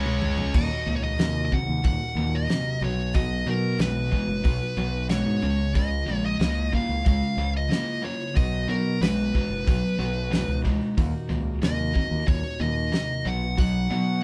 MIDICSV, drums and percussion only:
0, 0, Header, 1, 2, 480
1, 0, Start_track
1, 0, Key_signature, -6, "minor"
1, 0, Tempo, 652174
1, 396, Time_signature, 4, 2, 24, 8
1, 10478, End_track
2, 0, Start_track
2, 0, Title_t, "Drums"
2, 43, Note_on_c, 9, 48, 65
2, 117, Note_off_c, 9, 48, 0
2, 161, Note_on_c, 9, 45, 77
2, 234, Note_off_c, 9, 45, 0
2, 277, Note_on_c, 9, 43, 80
2, 351, Note_off_c, 9, 43, 0
2, 399, Note_on_c, 9, 49, 96
2, 401, Note_on_c, 9, 36, 112
2, 472, Note_off_c, 9, 49, 0
2, 475, Note_off_c, 9, 36, 0
2, 878, Note_on_c, 9, 46, 50
2, 882, Note_on_c, 9, 38, 102
2, 951, Note_off_c, 9, 46, 0
2, 956, Note_off_c, 9, 38, 0
2, 1121, Note_on_c, 9, 36, 75
2, 1194, Note_off_c, 9, 36, 0
2, 1354, Note_on_c, 9, 46, 46
2, 1360, Note_on_c, 9, 36, 101
2, 1428, Note_off_c, 9, 46, 0
2, 1434, Note_off_c, 9, 36, 0
2, 1838, Note_on_c, 9, 46, 40
2, 1843, Note_on_c, 9, 38, 84
2, 1912, Note_off_c, 9, 46, 0
2, 1916, Note_off_c, 9, 38, 0
2, 2314, Note_on_c, 9, 46, 57
2, 2318, Note_on_c, 9, 36, 104
2, 2388, Note_off_c, 9, 46, 0
2, 2391, Note_off_c, 9, 36, 0
2, 2794, Note_on_c, 9, 46, 47
2, 2798, Note_on_c, 9, 38, 96
2, 2867, Note_off_c, 9, 46, 0
2, 2872, Note_off_c, 9, 38, 0
2, 3035, Note_on_c, 9, 36, 64
2, 3109, Note_off_c, 9, 36, 0
2, 3272, Note_on_c, 9, 46, 49
2, 3275, Note_on_c, 9, 36, 101
2, 3346, Note_off_c, 9, 46, 0
2, 3348, Note_off_c, 9, 36, 0
2, 3749, Note_on_c, 9, 46, 39
2, 3753, Note_on_c, 9, 38, 89
2, 3822, Note_off_c, 9, 46, 0
2, 3827, Note_off_c, 9, 38, 0
2, 4233, Note_on_c, 9, 46, 43
2, 4235, Note_on_c, 9, 36, 105
2, 4306, Note_off_c, 9, 46, 0
2, 4308, Note_off_c, 9, 36, 0
2, 4715, Note_on_c, 9, 46, 40
2, 4720, Note_on_c, 9, 38, 103
2, 4789, Note_off_c, 9, 46, 0
2, 4793, Note_off_c, 9, 38, 0
2, 4957, Note_on_c, 9, 36, 69
2, 5030, Note_off_c, 9, 36, 0
2, 5196, Note_on_c, 9, 46, 49
2, 5198, Note_on_c, 9, 36, 112
2, 5270, Note_off_c, 9, 46, 0
2, 5271, Note_off_c, 9, 36, 0
2, 5678, Note_on_c, 9, 46, 39
2, 5683, Note_on_c, 9, 38, 83
2, 5752, Note_off_c, 9, 46, 0
2, 5756, Note_off_c, 9, 38, 0
2, 6157, Note_on_c, 9, 46, 52
2, 6158, Note_on_c, 9, 36, 118
2, 6231, Note_off_c, 9, 46, 0
2, 6232, Note_off_c, 9, 36, 0
2, 6642, Note_on_c, 9, 46, 55
2, 6646, Note_on_c, 9, 38, 106
2, 6715, Note_off_c, 9, 46, 0
2, 6720, Note_off_c, 9, 38, 0
2, 6881, Note_on_c, 9, 36, 74
2, 6954, Note_off_c, 9, 36, 0
2, 7121, Note_on_c, 9, 36, 102
2, 7121, Note_on_c, 9, 46, 55
2, 7194, Note_off_c, 9, 46, 0
2, 7195, Note_off_c, 9, 36, 0
2, 7603, Note_on_c, 9, 46, 44
2, 7607, Note_on_c, 9, 38, 99
2, 7676, Note_off_c, 9, 46, 0
2, 7681, Note_off_c, 9, 38, 0
2, 7840, Note_on_c, 9, 36, 63
2, 7914, Note_off_c, 9, 36, 0
2, 8080, Note_on_c, 9, 36, 104
2, 8080, Note_on_c, 9, 46, 49
2, 8153, Note_off_c, 9, 46, 0
2, 8154, Note_off_c, 9, 36, 0
2, 8556, Note_on_c, 9, 46, 45
2, 8561, Note_on_c, 9, 38, 103
2, 8630, Note_off_c, 9, 46, 0
2, 8634, Note_off_c, 9, 38, 0
2, 8799, Note_on_c, 9, 36, 75
2, 8873, Note_off_c, 9, 36, 0
2, 9037, Note_on_c, 9, 46, 49
2, 9038, Note_on_c, 9, 36, 114
2, 9110, Note_off_c, 9, 46, 0
2, 9112, Note_off_c, 9, 36, 0
2, 9520, Note_on_c, 9, 46, 37
2, 9524, Note_on_c, 9, 38, 84
2, 9593, Note_off_c, 9, 46, 0
2, 9598, Note_off_c, 9, 38, 0
2, 9997, Note_on_c, 9, 46, 51
2, 9998, Note_on_c, 9, 36, 105
2, 10071, Note_off_c, 9, 46, 0
2, 10072, Note_off_c, 9, 36, 0
2, 10478, End_track
0, 0, End_of_file